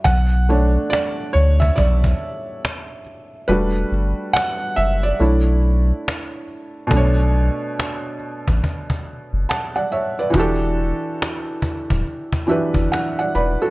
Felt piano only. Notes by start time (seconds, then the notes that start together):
0.04 F#5
0.49 A3 D4 C#5
0.90 D5
1.33 C#5
1.60 E5
1.76 D5
3.48 G3 A3 D4 F#4 B4
4.33 F#5
4.76 E5
5.03 D5
5.20 A3 D4 E4 C#5
6.87 B2 A3
6.93 D4 C#5
9.49 F#5 A5
9.76 D5 F#5
9.92 C#5 E5
10.19 B4 D5
10.30 E3 D4
10.35 F#4 G4
10.39 A4
12.47 E3 D4 F#4 G4 E5
12.51 B4
12.92 F#5
13.19 D5 F#5
13.35 B4 D5 B5
13.62 F#4 A4